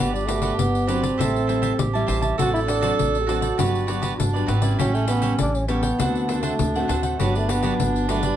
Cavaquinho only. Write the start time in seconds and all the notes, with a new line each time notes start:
Already playing: F#4 G4
0.00 B4 D5
0.13 G4 B4 D5
0.27 F#4 G4 B4 D5
0.42 F#4 G4 B4 D5
0.87 F#4 G4 B4 D5
1.02 G4 B4 D5
1.18 G4 C5 E5 A5
1.47 G4 C5 E5 A5
1.62 G4 C5 E5 A5
1.93 C5 E5 A5
2.07 G4 C5 E5 A5
2.21 C5 E5 A5
2.38 F#4 A4 C5 D5
2.53 A4 C5 D5
2.67 F#4 A4 C5 D5
2.81 F#4 A4 C5 D5
3.27 F#4 A4 C5 D5
3.41 A4 C5 D5
3.58 F#4 G4 B4 D5
3.87 F#4 G4 B4 D5
4.02 F#4 G4 B4 D5
4.33 G4 B4 D5
4.46 F#4 G4 B4 D5
4.61 G4 B4 D5
4.79 G4 A4 C#5 G5
4.94 A4 C#5 G5
5.08 G4 A4 C#5 G5
5.22 G4 A4 C#5 G5
5.68 G4 A4 C#5 G5
5.83 A4 C#5 G5
5.99 D4 A4 C5 F#5
6.28 D4 A4 C5 F#5
6.42 D4 A4 C5 F#5
6.75 A4 C5 F#5
6.88 D4 A4 C5 F#5
7.03 A4 C5 F#5
7.19 F#4 G4 B4 D5
7.35 G4 B4 D5
7.49 F#4 G4 B4 D5
7.63 F#4 G4 B4 D5
8.08 F#4 G4 B4 D5
8.23 G4 B4 D5